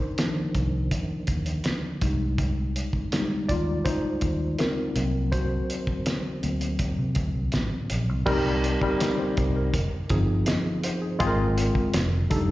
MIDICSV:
0, 0, Header, 1, 5, 480
1, 0, Start_track
1, 0, Key_signature, -3, "minor"
1, 0, Tempo, 735294
1, 1555, Time_signature, 4, 2, 24, 8
1, 8168, End_track
2, 0, Start_track
2, 0, Title_t, "Tine electric piano"
2, 0, Program_c, 0, 4
2, 0, Control_c, 0, 64, 127
2, 0, Note_on_c, 0, 62, 55
2, 0, Note_on_c, 0, 63, 59
2, 0, Note_on_c, 0, 70, 69
2, 0, Note_on_c, 0, 72, 83
2, 80, Note_off_c, 0, 72, 0
2, 91, Note_off_c, 0, 63, 0
2, 119, Note_on_c, 0, 51, 52
2, 121, Note_on_c, 0, 53, 45
2, 122, Note_on_c, 0, 58, 44
2, 125, Note_off_c, 0, 62, 0
2, 125, Note_on_c, 0, 62, 55
2, 435, Note_off_c, 0, 51, 0
2, 436, Note_off_c, 0, 53, 0
2, 437, Note_off_c, 0, 58, 0
2, 439, Note_off_c, 0, 62, 0
2, 1315, Note_on_c, 0, 55, 50
2, 1319, Note_on_c, 0, 56, 39
2, 1322, Note_on_c, 0, 63, 55
2, 1324, Control_c, 0, 64, 0
2, 1328, Note_off_c, 0, 70, 0
2, 1443, Control_c, 0, 64, 127
2, 2034, Note_off_c, 0, 55, 0
2, 2035, Note_off_c, 0, 56, 0
2, 2037, Note_off_c, 0, 63, 0
2, 2042, Note_on_c, 0, 55, 48
2, 2043, Note_on_c, 0, 56, 42
2, 2045, Note_on_c, 0, 63, 53
2, 2256, Note_off_c, 0, 55, 0
2, 2256, Note_off_c, 0, 56, 0
2, 2258, Note_off_c, 0, 63, 0
2, 2275, Note_on_c, 0, 74, 89
2, 2292, Note_on_c, 0, 65, 72
2, 2500, Note_off_c, 0, 74, 0
2, 2508, Note_off_c, 0, 65, 0
2, 2511, Note_on_c, 0, 72, 76
2, 2524, Note_on_c, 0, 63, 67
2, 2975, Note_off_c, 0, 63, 0
2, 2996, Note_on_c, 0, 70, 80
2, 3007, Note_on_c, 0, 60, 57
2, 3009, Note_off_c, 0, 72, 0
2, 3242, Note_off_c, 0, 60, 0
2, 3242, Note_on_c, 0, 54, 45
2, 3245, Note_on_c, 0, 58, 42
2, 3248, Control_c, 0, 64, 0
2, 3250, Note_on_c, 0, 60, 52
2, 3379, Control_c, 0, 64, 127
2, 3451, Note_off_c, 0, 70, 0
2, 3472, Note_on_c, 0, 72, 82
2, 3484, Note_on_c, 0, 66, 69
2, 4186, Note_off_c, 0, 54, 0
2, 4188, Note_off_c, 0, 58, 0
2, 4191, Note_off_c, 0, 60, 0
2, 4194, Note_on_c, 0, 54, 41
2, 4196, Note_on_c, 0, 58, 41
2, 4199, Note_on_c, 0, 60, 46
2, 4413, Note_off_c, 0, 54, 0
2, 4413, Note_off_c, 0, 58, 0
2, 4415, Note_off_c, 0, 60, 0
2, 4890, Note_off_c, 0, 72, 0
2, 4896, Note_off_c, 0, 66, 0
2, 5391, Note_on_c, 0, 55, 127
2, 5392, Note_on_c, 0, 60, 108
2, 5395, Note_on_c, 0, 63, 96
2, 5397, Note_on_c, 0, 70, 126
2, 5406, Control_c, 0, 64, 0
2, 5529, Control_c, 0, 64, 127
2, 5707, Note_off_c, 0, 55, 0
2, 5708, Note_off_c, 0, 60, 0
2, 5710, Note_off_c, 0, 63, 0
2, 5711, Note_off_c, 0, 70, 0
2, 5760, Note_on_c, 0, 55, 92
2, 5763, Note_on_c, 0, 63, 78
2, 5765, Note_on_c, 0, 60, 80
2, 5767, Note_on_c, 0, 70, 94
2, 5880, Note_on_c, 0, 75, 71
2, 5883, Note_off_c, 0, 70, 0
2, 5993, Note_off_c, 0, 75, 0
2, 5999, Note_on_c, 0, 72, 69
2, 6072, Note_off_c, 0, 55, 0
2, 6073, Note_off_c, 0, 63, 0
2, 6074, Note_off_c, 0, 60, 0
2, 6226, Note_off_c, 0, 72, 0
2, 6241, Note_on_c, 0, 70, 67
2, 6365, Control_c, 0, 64, 0
2, 6467, Note_off_c, 0, 70, 0
2, 6492, Control_c, 0, 64, 127
2, 6593, Note_on_c, 0, 53, 79
2, 6594, Note_on_c, 0, 60, 66
2, 6597, Note_on_c, 0, 63, 70
2, 6600, Note_on_c, 0, 68, 80
2, 6835, Note_on_c, 0, 75, 65
2, 6838, Note_off_c, 0, 68, 0
2, 7063, Note_off_c, 0, 75, 0
2, 7077, Note_on_c, 0, 72, 67
2, 7190, Note_off_c, 0, 72, 0
2, 7192, Note_on_c, 0, 68, 63
2, 7219, Note_off_c, 0, 53, 0
2, 7220, Note_off_c, 0, 60, 0
2, 7221, Note_off_c, 0, 63, 0
2, 7304, Note_off_c, 0, 68, 0
2, 7304, Note_on_c, 0, 56, 114
2, 7308, Note_on_c, 0, 60, 112
2, 7310, Note_on_c, 0, 65, 121
2, 7311, Note_on_c, 0, 68, 102
2, 7323, Control_c, 0, 64, 0
2, 7356, Note_off_c, 0, 68, 0
2, 7356, Note_on_c, 0, 70, 127
2, 7441, Control_c, 0, 64, 127
2, 7788, Note_off_c, 0, 56, 0
2, 7790, Note_off_c, 0, 60, 0
2, 7791, Note_off_c, 0, 65, 0
2, 7803, Control_c, 0, 64, 0
2, 7814, Note_off_c, 0, 70, 0
2, 7920, Control_c, 0, 64, 127
2, 8030, Note_on_c, 0, 55, 84
2, 8034, Note_on_c, 0, 62, 89
2, 8034, Note_on_c, 0, 63, 79
2, 8038, Note_on_c, 0, 69, 86
2, 8168, Note_off_c, 0, 55, 0
2, 8168, Note_off_c, 0, 62, 0
2, 8168, Note_off_c, 0, 63, 0
2, 8168, Note_off_c, 0, 69, 0
2, 8168, End_track
3, 0, Start_track
3, 0, Title_t, "Fingered electric bass"
3, 0, Program_c, 1, 33
3, 361, Note_on_c, 1, 36, 79
3, 569, Note_off_c, 1, 36, 0
3, 837, Note_on_c, 1, 39, 86
3, 1047, Note_off_c, 1, 39, 0
3, 1320, Note_on_c, 1, 36, 104
3, 1847, Note_off_c, 1, 36, 0
3, 2283, Note_on_c, 1, 39, 73
3, 2492, Note_off_c, 1, 39, 0
3, 2758, Note_on_c, 1, 39, 76
3, 2969, Note_off_c, 1, 39, 0
3, 3237, Note_on_c, 1, 36, 91
3, 3660, Note_off_c, 1, 36, 0
3, 4202, Note_on_c, 1, 38, 78
3, 4412, Note_off_c, 1, 38, 0
3, 4560, Note_on_c, 1, 48, 93
3, 4665, Note_off_c, 1, 48, 0
3, 4675, Note_on_c, 1, 38, 71
3, 4782, Note_off_c, 1, 38, 0
3, 4801, Note_on_c, 1, 36, 77
3, 4906, Note_off_c, 1, 36, 0
3, 4918, Note_on_c, 1, 33, 94
3, 5024, Note_off_c, 1, 33, 0
3, 5161, Note_on_c, 1, 34, 80
3, 5281, Note_off_c, 1, 34, 0
3, 5281, Note_on_c, 1, 36, 75
3, 5386, Note_off_c, 1, 36, 0
3, 5398, Note_on_c, 1, 36, 89
3, 5715, Note_off_c, 1, 36, 0
3, 6122, Note_on_c, 1, 36, 86
3, 6331, Note_off_c, 1, 36, 0
3, 6358, Note_on_c, 1, 29, 91
3, 6463, Note_off_c, 1, 29, 0
3, 6596, Note_on_c, 1, 31, 81
3, 6807, Note_off_c, 1, 31, 0
3, 7316, Note_on_c, 1, 32, 92
3, 7631, Note_off_c, 1, 32, 0
3, 7797, Note_on_c, 1, 29, 102
3, 8006, Note_off_c, 1, 29, 0
3, 8040, Note_on_c, 1, 29, 87
3, 8168, Note_off_c, 1, 29, 0
3, 8168, End_track
4, 0, Start_track
4, 0, Title_t, "Muted fingered electric bass strokes"
4, 722, Note_on_c, 9, 29, 39
4, 787, Note_off_c, 9, 29, 0
4, 2638, Note_on_c, 9, 29, 42
4, 2703, Note_off_c, 9, 29, 0
4, 6482, Note_on_c, 9, 29, 46
4, 6548, Note_off_c, 9, 29, 0
4, 8168, End_track
5, 0, Start_track
5, 0, Title_t, "Drums"
5, 117, Note_on_c, 9, 42, 94
5, 122, Note_on_c, 9, 38, 103
5, 182, Note_off_c, 9, 42, 0
5, 187, Note_off_c, 9, 38, 0
5, 356, Note_on_c, 9, 42, 63
5, 359, Note_on_c, 9, 36, 83
5, 421, Note_off_c, 9, 42, 0
5, 424, Note_off_c, 9, 36, 0
5, 596, Note_on_c, 9, 42, 78
5, 597, Note_on_c, 9, 36, 78
5, 661, Note_off_c, 9, 42, 0
5, 662, Note_off_c, 9, 36, 0
5, 830, Note_on_c, 9, 42, 64
5, 835, Note_on_c, 9, 36, 69
5, 895, Note_off_c, 9, 42, 0
5, 901, Note_off_c, 9, 36, 0
5, 952, Note_on_c, 9, 42, 53
5, 1018, Note_off_c, 9, 42, 0
5, 1070, Note_on_c, 9, 42, 67
5, 1081, Note_on_c, 9, 38, 102
5, 1135, Note_off_c, 9, 42, 0
5, 1147, Note_off_c, 9, 38, 0
5, 1315, Note_on_c, 9, 42, 75
5, 1318, Note_on_c, 9, 36, 85
5, 1380, Note_off_c, 9, 42, 0
5, 1383, Note_off_c, 9, 36, 0
5, 1556, Note_on_c, 9, 36, 106
5, 1556, Note_on_c, 9, 42, 78
5, 1621, Note_off_c, 9, 36, 0
5, 1621, Note_off_c, 9, 42, 0
5, 1801, Note_on_c, 9, 42, 66
5, 1866, Note_off_c, 9, 42, 0
5, 1913, Note_on_c, 9, 36, 66
5, 1979, Note_off_c, 9, 36, 0
5, 2038, Note_on_c, 9, 42, 100
5, 2043, Note_on_c, 9, 38, 102
5, 2103, Note_off_c, 9, 42, 0
5, 2108, Note_off_c, 9, 38, 0
5, 2280, Note_on_c, 9, 36, 77
5, 2280, Note_on_c, 9, 42, 65
5, 2345, Note_off_c, 9, 42, 0
5, 2346, Note_off_c, 9, 36, 0
5, 2517, Note_on_c, 9, 36, 84
5, 2517, Note_on_c, 9, 42, 87
5, 2582, Note_off_c, 9, 42, 0
5, 2583, Note_off_c, 9, 36, 0
5, 2750, Note_on_c, 9, 42, 66
5, 2756, Note_on_c, 9, 36, 74
5, 2815, Note_off_c, 9, 42, 0
5, 2821, Note_off_c, 9, 36, 0
5, 2993, Note_on_c, 9, 42, 69
5, 3005, Note_on_c, 9, 38, 86
5, 3059, Note_off_c, 9, 42, 0
5, 3070, Note_off_c, 9, 38, 0
5, 3235, Note_on_c, 9, 42, 76
5, 3301, Note_off_c, 9, 42, 0
5, 3476, Note_on_c, 9, 36, 102
5, 3477, Note_on_c, 9, 42, 72
5, 3542, Note_off_c, 9, 36, 0
5, 3543, Note_off_c, 9, 42, 0
5, 3720, Note_on_c, 9, 42, 68
5, 3785, Note_off_c, 9, 42, 0
5, 3833, Note_on_c, 9, 36, 68
5, 3899, Note_off_c, 9, 36, 0
5, 3956, Note_on_c, 9, 42, 101
5, 3961, Note_on_c, 9, 38, 99
5, 4021, Note_off_c, 9, 42, 0
5, 4026, Note_off_c, 9, 38, 0
5, 4198, Note_on_c, 9, 42, 59
5, 4263, Note_off_c, 9, 42, 0
5, 4315, Note_on_c, 9, 42, 54
5, 4380, Note_off_c, 9, 42, 0
5, 4432, Note_on_c, 9, 42, 85
5, 4436, Note_on_c, 9, 36, 87
5, 4498, Note_off_c, 9, 42, 0
5, 4501, Note_off_c, 9, 36, 0
5, 4668, Note_on_c, 9, 42, 61
5, 4675, Note_on_c, 9, 36, 80
5, 4733, Note_off_c, 9, 42, 0
5, 4740, Note_off_c, 9, 36, 0
5, 4909, Note_on_c, 9, 42, 65
5, 4920, Note_on_c, 9, 38, 90
5, 4974, Note_off_c, 9, 42, 0
5, 4985, Note_off_c, 9, 38, 0
5, 5155, Note_on_c, 9, 42, 80
5, 5221, Note_off_c, 9, 42, 0
5, 5395, Note_on_c, 9, 49, 100
5, 5396, Note_on_c, 9, 36, 124
5, 5460, Note_off_c, 9, 49, 0
5, 5461, Note_off_c, 9, 36, 0
5, 5640, Note_on_c, 9, 42, 69
5, 5705, Note_off_c, 9, 42, 0
5, 5755, Note_on_c, 9, 36, 76
5, 5820, Note_off_c, 9, 36, 0
5, 5878, Note_on_c, 9, 42, 109
5, 5883, Note_on_c, 9, 38, 116
5, 5944, Note_off_c, 9, 42, 0
5, 5949, Note_off_c, 9, 38, 0
5, 6118, Note_on_c, 9, 42, 66
5, 6120, Note_on_c, 9, 36, 89
5, 6183, Note_off_c, 9, 42, 0
5, 6186, Note_off_c, 9, 36, 0
5, 6356, Note_on_c, 9, 36, 88
5, 6356, Note_on_c, 9, 42, 95
5, 6421, Note_off_c, 9, 36, 0
5, 6421, Note_off_c, 9, 42, 0
5, 6590, Note_on_c, 9, 42, 73
5, 6595, Note_on_c, 9, 36, 82
5, 6655, Note_off_c, 9, 42, 0
5, 6660, Note_off_c, 9, 36, 0
5, 6829, Note_on_c, 9, 42, 81
5, 6840, Note_on_c, 9, 38, 106
5, 6894, Note_off_c, 9, 42, 0
5, 6906, Note_off_c, 9, 38, 0
5, 7073, Note_on_c, 9, 42, 86
5, 7138, Note_off_c, 9, 42, 0
5, 7311, Note_on_c, 9, 42, 82
5, 7313, Note_on_c, 9, 36, 121
5, 7377, Note_off_c, 9, 42, 0
5, 7379, Note_off_c, 9, 36, 0
5, 7557, Note_on_c, 9, 42, 81
5, 7622, Note_off_c, 9, 42, 0
5, 7671, Note_on_c, 9, 36, 80
5, 7737, Note_off_c, 9, 36, 0
5, 7792, Note_on_c, 9, 42, 110
5, 7797, Note_on_c, 9, 38, 110
5, 7857, Note_off_c, 9, 42, 0
5, 7862, Note_off_c, 9, 38, 0
5, 8034, Note_on_c, 9, 42, 69
5, 8037, Note_on_c, 9, 36, 89
5, 8099, Note_off_c, 9, 42, 0
5, 8102, Note_off_c, 9, 36, 0
5, 8168, End_track
0, 0, End_of_file